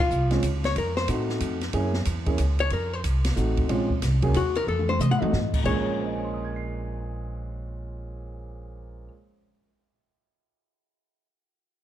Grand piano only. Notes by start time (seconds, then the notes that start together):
0.31 G#3 C4 C#4 F4
1.08 A3 C4 D#4 F#4
1.73 A#3 C#4 E4 G#4
2.26 A#3 C#4 E4 G#4
3.36 A3 C4 D#4 F#4
3.69 G#3 C4 C#4 F4
4.22 F#3 A#3 C#4 G#4
5.21 A3 C4 D#4 F#4
5.64 A#2 G#3 A#3 C#4 G#4
5.99 C5
6.06 D#5
6.15 G#5
6.24 C6
6.34 D#6
6.44 G#6
6.56 C7